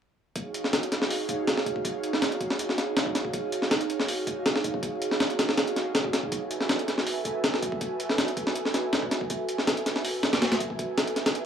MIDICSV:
0, 0, Header, 1, 3, 480
1, 0, Start_track
1, 0, Tempo, 372671
1, 459, Time_signature, 4, 2, 24, 8
1, 14755, End_track
2, 0, Start_track
2, 0, Title_t, "Analog synth pad"
2, 0, Program_c, 0, 89
2, 461, Note_on_c, 0, 63, 84
2, 461, Note_on_c, 0, 73, 78
2, 462, Note_on_c, 0, 68, 80
2, 463, Note_on_c, 0, 66, 77
2, 463, Note_on_c, 0, 77, 92
2, 1152, Note_off_c, 0, 63, 0
2, 1152, Note_off_c, 0, 73, 0
2, 1153, Note_off_c, 0, 66, 0
2, 1153, Note_off_c, 0, 68, 0
2, 1153, Note_off_c, 0, 77, 0
2, 1177, Note_on_c, 0, 66, 79
2, 1178, Note_on_c, 0, 63, 84
2, 1178, Note_on_c, 0, 68, 81
2, 1178, Note_on_c, 0, 77, 94
2, 1179, Note_on_c, 0, 73, 79
2, 2350, Note_off_c, 0, 66, 0
2, 2351, Note_off_c, 0, 63, 0
2, 2351, Note_off_c, 0, 68, 0
2, 2351, Note_off_c, 0, 73, 0
2, 2351, Note_off_c, 0, 77, 0
2, 2370, Note_on_c, 0, 73, 88
2, 2371, Note_on_c, 0, 66, 87
2, 2373, Note_on_c, 0, 63, 97
2, 2373, Note_on_c, 0, 68, 88
2, 2374, Note_on_c, 0, 77, 108
2, 3067, Note_off_c, 0, 66, 0
2, 3067, Note_off_c, 0, 73, 0
2, 3068, Note_off_c, 0, 63, 0
2, 3068, Note_off_c, 0, 68, 0
2, 3069, Note_off_c, 0, 77, 0
2, 3091, Note_on_c, 0, 77, 94
2, 3092, Note_on_c, 0, 66, 83
2, 3093, Note_on_c, 0, 68, 81
2, 3094, Note_on_c, 0, 63, 87
2, 3095, Note_on_c, 0, 73, 82
2, 4268, Note_off_c, 0, 66, 0
2, 4268, Note_off_c, 0, 68, 0
2, 4268, Note_off_c, 0, 77, 0
2, 4269, Note_off_c, 0, 63, 0
2, 4269, Note_off_c, 0, 73, 0
2, 4285, Note_on_c, 0, 66, 80
2, 4285, Note_on_c, 0, 77, 92
2, 4286, Note_on_c, 0, 63, 85
2, 4286, Note_on_c, 0, 73, 78
2, 4289, Note_on_c, 0, 68, 76
2, 4984, Note_off_c, 0, 66, 0
2, 4984, Note_off_c, 0, 77, 0
2, 4985, Note_off_c, 0, 63, 0
2, 4985, Note_off_c, 0, 73, 0
2, 4986, Note_off_c, 0, 68, 0
2, 5007, Note_on_c, 0, 66, 79
2, 5008, Note_on_c, 0, 63, 83
2, 5008, Note_on_c, 0, 73, 83
2, 5009, Note_on_c, 0, 77, 96
2, 5010, Note_on_c, 0, 68, 82
2, 6185, Note_off_c, 0, 66, 0
2, 6186, Note_off_c, 0, 63, 0
2, 6186, Note_off_c, 0, 73, 0
2, 6186, Note_off_c, 0, 77, 0
2, 6187, Note_off_c, 0, 68, 0
2, 6213, Note_on_c, 0, 68, 89
2, 6214, Note_on_c, 0, 73, 87
2, 6215, Note_on_c, 0, 66, 88
2, 6215, Note_on_c, 0, 77, 108
2, 6218, Note_on_c, 0, 63, 97
2, 6908, Note_off_c, 0, 68, 0
2, 6909, Note_off_c, 0, 66, 0
2, 6909, Note_off_c, 0, 73, 0
2, 6909, Note_off_c, 0, 77, 0
2, 6911, Note_off_c, 0, 63, 0
2, 6940, Note_on_c, 0, 63, 92
2, 6940, Note_on_c, 0, 68, 81
2, 6941, Note_on_c, 0, 66, 84
2, 6941, Note_on_c, 0, 73, 82
2, 6943, Note_on_c, 0, 77, 94
2, 8112, Note_off_c, 0, 63, 0
2, 8112, Note_off_c, 0, 66, 0
2, 8112, Note_off_c, 0, 68, 0
2, 8112, Note_off_c, 0, 73, 0
2, 8113, Note_off_c, 0, 77, 0
2, 8135, Note_on_c, 0, 71, 81
2, 8137, Note_on_c, 0, 69, 77
2, 8137, Note_on_c, 0, 80, 92
2, 8138, Note_on_c, 0, 66, 85
2, 8138, Note_on_c, 0, 76, 78
2, 8829, Note_off_c, 0, 71, 0
2, 8830, Note_off_c, 0, 69, 0
2, 8830, Note_off_c, 0, 80, 0
2, 8831, Note_off_c, 0, 66, 0
2, 8831, Note_off_c, 0, 76, 0
2, 8856, Note_on_c, 0, 66, 89
2, 8856, Note_on_c, 0, 80, 97
2, 8859, Note_on_c, 0, 69, 81
2, 8859, Note_on_c, 0, 71, 77
2, 8860, Note_on_c, 0, 76, 83
2, 10030, Note_off_c, 0, 66, 0
2, 10030, Note_off_c, 0, 80, 0
2, 10031, Note_off_c, 0, 69, 0
2, 10031, Note_off_c, 0, 71, 0
2, 10032, Note_off_c, 0, 76, 0
2, 10058, Note_on_c, 0, 69, 86
2, 10059, Note_on_c, 0, 66, 98
2, 10059, Note_on_c, 0, 71, 86
2, 10059, Note_on_c, 0, 80, 110
2, 10061, Note_on_c, 0, 76, 86
2, 10751, Note_off_c, 0, 66, 0
2, 10751, Note_off_c, 0, 69, 0
2, 10751, Note_off_c, 0, 71, 0
2, 10751, Note_off_c, 0, 80, 0
2, 10752, Note_off_c, 0, 76, 0
2, 10780, Note_on_c, 0, 66, 91
2, 10781, Note_on_c, 0, 76, 81
2, 10782, Note_on_c, 0, 69, 81
2, 10782, Note_on_c, 0, 71, 81
2, 10784, Note_on_c, 0, 80, 98
2, 11952, Note_off_c, 0, 66, 0
2, 11953, Note_off_c, 0, 69, 0
2, 11953, Note_off_c, 0, 71, 0
2, 11953, Note_off_c, 0, 76, 0
2, 11954, Note_off_c, 0, 80, 0
2, 11976, Note_on_c, 0, 76, 77
2, 11977, Note_on_c, 0, 66, 84
2, 11977, Note_on_c, 0, 69, 80
2, 11977, Note_on_c, 0, 71, 77
2, 11977, Note_on_c, 0, 80, 95
2, 12670, Note_off_c, 0, 66, 0
2, 12670, Note_off_c, 0, 69, 0
2, 12670, Note_off_c, 0, 71, 0
2, 12670, Note_off_c, 0, 76, 0
2, 12670, Note_off_c, 0, 80, 0
2, 12693, Note_on_c, 0, 80, 97
2, 12695, Note_on_c, 0, 71, 82
2, 12695, Note_on_c, 0, 76, 80
2, 12696, Note_on_c, 0, 69, 79
2, 12697, Note_on_c, 0, 66, 86
2, 13868, Note_off_c, 0, 80, 0
2, 13869, Note_off_c, 0, 71, 0
2, 13869, Note_off_c, 0, 76, 0
2, 13870, Note_off_c, 0, 66, 0
2, 13870, Note_off_c, 0, 69, 0
2, 13892, Note_on_c, 0, 80, 109
2, 13893, Note_on_c, 0, 76, 88
2, 13895, Note_on_c, 0, 66, 96
2, 13895, Note_on_c, 0, 69, 91
2, 13895, Note_on_c, 0, 71, 89
2, 14587, Note_off_c, 0, 80, 0
2, 14588, Note_off_c, 0, 76, 0
2, 14589, Note_off_c, 0, 66, 0
2, 14589, Note_off_c, 0, 69, 0
2, 14589, Note_off_c, 0, 71, 0
2, 14612, Note_on_c, 0, 66, 90
2, 14612, Note_on_c, 0, 69, 83
2, 14612, Note_on_c, 0, 71, 79
2, 14612, Note_on_c, 0, 76, 84
2, 14612, Note_on_c, 0, 80, 97
2, 14755, Note_off_c, 0, 66, 0
2, 14755, Note_off_c, 0, 69, 0
2, 14755, Note_off_c, 0, 71, 0
2, 14755, Note_off_c, 0, 76, 0
2, 14755, Note_off_c, 0, 80, 0
2, 14755, End_track
3, 0, Start_track
3, 0, Title_t, "Drums"
3, 458, Note_on_c, 9, 36, 89
3, 458, Note_on_c, 9, 42, 75
3, 587, Note_off_c, 9, 36, 0
3, 587, Note_off_c, 9, 42, 0
3, 700, Note_on_c, 9, 42, 57
3, 827, Note_on_c, 9, 38, 34
3, 829, Note_off_c, 9, 42, 0
3, 941, Note_off_c, 9, 38, 0
3, 941, Note_on_c, 9, 38, 100
3, 941, Note_on_c, 9, 42, 75
3, 1070, Note_off_c, 9, 38, 0
3, 1070, Note_off_c, 9, 42, 0
3, 1070, Note_on_c, 9, 42, 38
3, 1183, Note_off_c, 9, 42, 0
3, 1183, Note_on_c, 9, 38, 35
3, 1183, Note_on_c, 9, 42, 62
3, 1309, Note_off_c, 9, 38, 0
3, 1309, Note_on_c, 9, 38, 41
3, 1312, Note_off_c, 9, 42, 0
3, 1423, Note_on_c, 9, 46, 69
3, 1438, Note_off_c, 9, 38, 0
3, 1552, Note_off_c, 9, 46, 0
3, 1660, Note_on_c, 9, 36, 83
3, 1660, Note_on_c, 9, 42, 61
3, 1789, Note_off_c, 9, 36, 0
3, 1789, Note_off_c, 9, 42, 0
3, 1900, Note_on_c, 9, 38, 103
3, 1900, Note_on_c, 9, 42, 78
3, 2029, Note_off_c, 9, 38, 0
3, 2029, Note_off_c, 9, 42, 0
3, 2029, Note_on_c, 9, 38, 43
3, 2140, Note_on_c, 9, 36, 82
3, 2144, Note_on_c, 9, 42, 60
3, 2158, Note_off_c, 9, 38, 0
3, 2265, Note_off_c, 9, 36, 0
3, 2265, Note_on_c, 9, 36, 81
3, 2272, Note_off_c, 9, 42, 0
3, 2379, Note_off_c, 9, 36, 0
3, 2379, Note_on_c, 9, 36, 92
3, 2382, Note_on_c, 9, 42, 76
3, 2508, Note_off_c, 9, 36, 0
3, 2511, Note_off_c, 9, 42, 0
3, 2621, Note_on_c, 9, 42, 59
3, 2747, Note_on_c, 9, 38, 39
3, 2750, Note_off_c, 9, 42, 0
3, 2859, Note_off_c, 9, 38, 0
3, 2859, Note_on_c, 9, 38, 100
3, 2859, Note_on_c, 9, 42, 76
3, 2986, Note_off_c, 9, 42, 0
3, 2986, Note_on_c, 9, 42, 38
3, 2987, Note_off_c, 9, 38, 0
3, 3098, Note_off_c, 9, 42, 0
3, 3098, Note_on_c, 9, 36, 86
3, 3098, Note_on_c, 9, 42, 59
3, 3225, Note_on_c, 9, 38, 50
3, 3227, Note_off_c, 9, 36, 0
3, 3227, Note_off_c, 9, 42, 0
3, 3338, Note_on_c, 9, 42, 76
3, 3354, Note_off_c, 9, 38, 0
3, 3466, Note_on_c, 9, 38, 35
3, 3467, Note_off_c, 9, 42, 0
3, 3581, Note_off_c, 9, 38, 0
3, 3581, Note_on_c, 9, 38, 46
3, 3581, Note_on_c, 9, 42, 60
3, 3710, Note_off_c, 9, 38, 0
3, 3710, Note_off_c, 9, 42, 0
3, 3820, Note_on_c, 9, 38, 103
3, 3820, Note_on_c, 9, 42, 75
3, 3944, Note_on_c, 9, 36, 86
3, 3949, Note_off_c, 9, 38, 0
3, 3949, Note_off_c, 9, 42, 0
3, 4059, Note_on_c, 9, 38, 51
3, 4059, Note_on_c, 9, 42, 61
3, 4072, Note_off_c, 9, 36, 0
3, 4183, Note_on_c, 9, 36, 81
3, 4187, Note_off_c, 9, 38, 0
3, 4187, Note_off_c, 9, 42, 0
3, 4296, Note_on_c, 9, 42, 75
3, 4297, Note_off_c, 9, 36, 0
3, 4297, Note_on_c, 9, 36, 91
3, 4425, Note_off_c, 9, 42, 0
3, 4426, Note_off_c, 9, 36, 0
3, 4538, Note_on_c, 9, 42, 57
3, 4664, Note_on_c, 9, 38, 36
3, 4667, Note_off_c, 9, 42, 0
3, 4779, Note_off_c, 9, 38, 0
3, 4779, Note_on_c, 9, 38, 101
3, 4779, Note_on_c, 9, 42, 76
3, 4904, Note_off_c, 9, 42, 0
3, 4904, Note_on_c, 9, 42, 39
3, 4908, Note_off_c, 9, 38, 0
3, 5020, Note_off_c, 9, 42, 0
3, 5020, Note_on_c, 9, 42, 61
3, 5146, Note_on_c, 9, 38, 41
3, 5149, Note_off_c, 9, 42, 0
3, 5260, Note_on_c, 9, 46, 69
3, 5275, Note_off_c, 9, 38, 0
3, 5388, Note_off_c, 9, 46, 0
3, 5498, Note_on_c, 9, 36, 84
3, 5500, Note_on_c, 9, 42, 58
3, 5627, Note_off_c, 9, 36, 0
3, 5629, Note_off_c, 9, 42, 0
3, 5741, Note_on_c, 9, 38, 104
3, 5741, Note_on_c, 9, 42, 75
3, 5868, Note_off_c, 9, 38, 0
3, 5868, Note_on_c, 9, 38, 44
3, 5869, Note_off_c, 9, 42, 0
3, 5979, Note_on_c, 9, 36, 84
3, 5981, Note_on_c, 9, 42, 59
3, 5997, Note_off_c, 9, 38, 0
3, 6105, Note_off_c, 9, 36, 0
3, 6105, Note_on_c, 9, 36, 88
3, 6110, Note_off_c, 9, 42, 0
3, 6218, Note_off_c, 9, 36, 0
3, 6218, Note_on_c, 9, 36, 93
3, 6219, Note_on_c, 9, 42, 76
3, 6347, Note_off_c, 9, 36, 0
3, 6348, Note_off_c, 9, 42, 0
3, 6462, Note_on_c, 9, 42, 59
3, 6588, Note_on_c, 9, 38, 38
3, 6591, Note_off_c, 9, 42, 0
3, 6701, Note_off_c, 9, 38, 0
3, 6701, Note_on_c, 9, 38, 102
3, 6701, Note_on_c, 9, 42, 75
3, 6828, Note_off_c, 9, 42, 0
3, 6828, Note_on_c, 9, 42, 40
3, 6830, Note_off_c, 9, 38, 0
3, 6942, Note_off_c, 9, 42, 0
3, 6942, Note_on_c, 9, 38, 93
3, 6942, Note_on_c, 9, 42, 69
3, 7069, Note_off_c, 9, 38, 0
3, 7069, Note_on_c, 9, 38, 51
3, 7071, Note_off_c, 9, 42, 0
3, 7181, Note_off_c, 9, 38, 0
3, 7181, Note_on_c, 9, 38, 86
3, 7181, Note_on_c, 9, 42, 68
3, 7309, Note_off_c, 9, 38, 0
3, 7309, Note_off_c, 9, 42, 0
3, 7309, Note_on_c, 9, 42, 35
3, 7423, Note_off_c, 9, 42, 0
3, 7423, Note_on_c, 9, 38, 32
3, 7423, Note_on_c, 9, 42, 55
3, 7552, Note_off_c, 9, 38, 0
3, 7552, Note_off_c, 9, 42, 0
3, 7660, Note_on_c, 9, 38, 105
3, 7660, Note_on_c, 9, 42, 79
3, 7785, Note_on_c, 9, 36, 84
3, 7789, Note_off_c, 9, 38, 0
3, 7789, Note_off_c, 9, 42, 0
3, 7900, Note_on_c, 9, 38, 52
3, 7900, Note_on_c, 9, 42, 60
3, 7914, Note_off_c, 9, 36, 0
3, 8025, Note_on_c, 9, 36, 82
3, 8028, Note_off_c, 9, 38, 0
3, 8028, Note_off_c, 9, 42, 0
3, 8139, Note_off_c, 9, 36, 0
3, 8139, Note_on_c, 9, 36, 94
3, 8139, Note_on_c, 9, 42, 74
3, 8268, Note_off_c, 9, 36, 0
3, 8268, Note_off_c, 9, 42, 0
3, 8381, Note_on_c, 9, 42, 58
3, 8508, Note_on_c, 9, 38, 36
3, 8510, Note_off_c, 9, 42, 0
3, 8621, Note_off_c, 9, 38, 0
3, 8621, Note_on_c, 9, 38, 104
3, 8621, Note_on_c, 9, 42, 77
3, 8748, Note_off_c, 9, 42, 0
3, 8748, Note_on_c, 9, 42, 39
3, 8750, Note_off_c, 9, 38, 0
3, 8863, Note_off_c, 9, 42, 0
3, 8863, Note_on_c, 9, 38, 35
3, 8863, Note_on_c, 9, 42, 61
3, 8988, Note_off_c, 9, 38, 0
3, 8988, Note_on_c, 9, 38, 41
3, 8992, Note_off_c, 9, 42, 0
3, 9101, Note_on_c, 9, 46, 72
3, 9117, Note_off_c, 9, 38, 0
3, 9230, Note_off_c, 9, 46, 0
3, 9339, Note_on_c, 9, 36, 83
3, 9339, Note_on_c, 9, 42, 60
3, 9468, Note_off_c, 9, 36, 0
3, 9468, Note_off_c, 9, 42, 0
3, 9580, Note_on_c, 9, 38, 105
3, 9580, Note_on_c, 9, 42, 79
3, 9708, Note_off_c, 9, 38, 0
3, 9708, Note_on_c, 9, 38, 43
3, 9709, Note_off_c, 9, 42, 0
3, 9819, Note_on_c, 9, 36, 87
3, 9821, Note_on_c, 9, 42, 61
3, 9837, Note_off_c, 9, 38, 0
3, 9945, Note_off_c, 9, 36, 0
3, 9945, Note_on_c, 9, 36, 87
3, 9949, Note_off_c, 9, 42, 0
3, 10059, Note_off_c, 9, 36, 0
3, 10059, Note_on_c, 9, 36, 96
3, 10059, Note_on_c, 9, 42, 76
3, 10188, Note_off_c, 9, 36, 0
3, 10188, Note_off_c, 9, 42, 0
3, 10301, Note_on_c, 9, 42, 61
3, 10426, Note_on_c, 9, 38, 41
3, 10430, Note_off_c, 9, 42, 0
3, 10539, Note_off_c, 9, 38, 0
3, 10539, Note_on_c, 9, 38, 100
3, 10539, Note_on_c, 9, 42, 78
3, 10665, Note_off_c, 9, 42, 0
3, 10665, Note_on_c, 9, 42, 39
3, 10668, Note_off_c, 9, 38, 0
3, 10779, Note_off_c, 9, 42, 0
3, 10779, Note_on_c, 9, 36, 85
3, 10779, Note_on_c, 9, 42, 59
3, 10907, Note_on_c, 9, 38, 53
3, 10908, Note_off_c, 9, 36, 0
3, 10908, Note_off_c, 9, 42, 0
3, 11019, Note_on_c, 9, 42, 79
3, 11036, Note_off_c, 9, 38, 0
3, 11147, Note_on_c, 9, 38, 36
3, 11148, Note_off_c, 9, 42, 0
3, 11259, Note_off_c, 9, 38, 0
3, 11259, Note_on_c, 9, 38, 49
3, 11259, Note_on_c, 9, 42, 61
3, 11388, Note_off_c, 9, 38, 0
3, 11388, Note_off_c, 9, 42, 0
3, 11500, Note_on_c, 9, 38, 103
3, 11500, Note_on_c, 9, 42, 79
3, 11624, Note_on_c, 9, 36, 83
3, 11628, Note_off_c, 9, 38, 0
3, 11628, Note_off_c, 9, 42, 0
3, 11738, Note_on_c, 9, 38, 53
3, 11738, Note_on_c, 9, 42, 61
3, 11753, Note_off_c, 9, 36, 0
3, 11864, Note_on_c, 9, 36, 86
3, 11867, Note_off_c, 9, 38, 0
3, 11867, Note_off_c, 9, 42, 0
3, 11977, Note_on_c, 9, 42, 75
3, 11978, Note_off_c, 9, 36, 0
3, 11978, Note_on_c, 9, 36, 95
3, 12106, Note_off_c, 9, 42, 0
3, 12107, Note_off_c, 9, 36, 0
3, 12217, Note_on_c, 9, 42, 60
3, 12344, Note_on_c, 9, 38, 37
3, 12346, Note_off_c, 9, 42, 0
3, 12459, Note_off_c, 9, 38, 0
3, 12459, Note_on_c, 9, 38, 105
3, 12459, Note_on_c, 9, 42, 79
3, 12585, Note_off_c, 9, 42, 0
3, 12585, Note_on_c, 9, 42, 40
3, 12588, Note_off_c, 9, 38, 0
3, 12701, Note_off_c, 9, 42, 0
3, 12701, Note_on_c, 9, 38, 36
3, 12701, Note_on_c, 9, 42, 63
3, 12826, Note_off_c, 9, 38, 0
3, 12826, Note_on_c, 9, 38, 44
3, 12830, Note_off_c, 9, 42, 0
3, 12939, Note_on_c, 9, 46, 70
3, 12954, Note_off_c, 9, 38, 0
3, 13068, Note_off_c, 9, 46, 0
3, 13178, Note_on_c, 9, 38, 92
3, 13178, Note_on_c, 9, 42, 70
3, 13305, Note_off_c, 9, 38, 0
3, 13305, Note_off_c, 9, 42, 0
3, 13305, Note_on_c, 9, 38, 94
3, 13305, Note_on_c, 9, 42, 71
3, 13420, Note_off_c, 9, 38, 0
3, 13420, Note_off_c, 9, 42, 0
3, 13420, Note_on_c, 9, 38, 91
3, 13420, Note_on_c, 9, 42, 70
3, 13547, Note_off_c, 9, 38, 0
3, 13547, Note_off_c, 9, 42, 0
3, 13547, Note_on_c, 9, 38, 90
3, 13547, Note_on_c, 9, 42, 72
3, 13658, Note_on_c, 9, 36, 85
3, 13659, Note_off_c, 9, 42, 0
3, 13659, Note_on_c, 9, 42, 63
3, 13675, Note_off_c, 9, 38, 0
3, 13785, Note_off_c, 9, 36, 0
3, 13785, Note_on_c, 9, 36, 85
3, 13788, Note_off_c, 9, 42, 0
3, 13898, Note_off_c, 9, 36, 0
3, 13898, Note_on_c, 9, 36, 95
3, 13898, Note_on_c, 9, 42, 77
3, 14026, Note_off_c, 9, 36, 0
3, 14027, Note_off_c, 9, 42, 0
3, 14137, Note_on_c, 9, 38, 94
3, 14137, Note_on_c, 9, 42, 70
3, 14264, Note_off_c, 9, 42, 0
3, 14264, Note_on_c, 9, 42, 34
3, 14265, Note_off_c, 9, 38, 0
3, 14376, Note_off_c, 9, 42, 0
3, 14376, Note_on_c, 9, 38, 30
3, 14376, Note_on_c, 9, 42, 54
3, 14503, Note_off_c, 9, 38, 0
3, 14503, Note_off_c, 9, 42, 0
3, 14503, Note_on_c, 9, 38, 94
3, 14503, Note_on_c, 9, 42, 73
3, 14619, Note_off_c, 9, 42, 0
3, 14619, Note_on_c, 9, 42, 37
3, 14632, Note_off_c, 9, 38, 0
3, 14748, Note_off_c, 9, 42, 0
3, 14755, End_track
0, 0, End_of_file